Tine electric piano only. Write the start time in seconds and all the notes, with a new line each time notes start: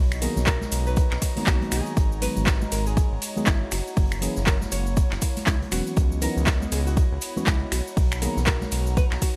0.21 D#3 F#3 A#3 B3 G#4
1.36 D#3 F#3 A#3 B3 D#4
2.21 D#3 F#3 G#3 B3 D#4
3.36 D#3 F#3 G#3 B3 G#4
4.21 E3 F#3 A#3 C#4 G#4
5.71 E3 F#3 B3 C#4 F#4
6.21 E3 F#3 B3 C#4 D#4
7.36 E3 F#3 B3 C#4 F#4
8.21 D#3 F#3 A#3 B3 G#4